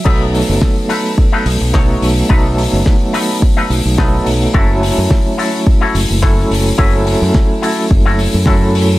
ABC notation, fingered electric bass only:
X:1
M:4/4
L:1/16
Q:"Swing 16ths" 1/4=107
K:Bmix
V:1 name="Fingered electric bass" clef=bass
B,,,2 z F,,, z6 B,,, B,,,2 z B,,, z | B,,,2 z F,,, z6 B,,, B,,,2 z B,,, z | F,,,2 z F,, z6 F,,, F,,,2 z F,,, z | F,,,2 z F,, z4 F,,,2 z F,,4 z |]